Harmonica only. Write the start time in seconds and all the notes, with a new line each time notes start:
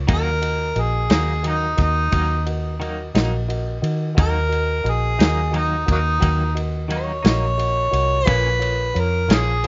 0.13 A#4
0.81 G#4
1.48 D#4
1.82 D#4
4.19 A#4
4.90 G#4
5.57 D#4
5.91 F#3 A#3 D#4
6.95 C#5
8.27 B4
8.99 A#4
9.34 G#4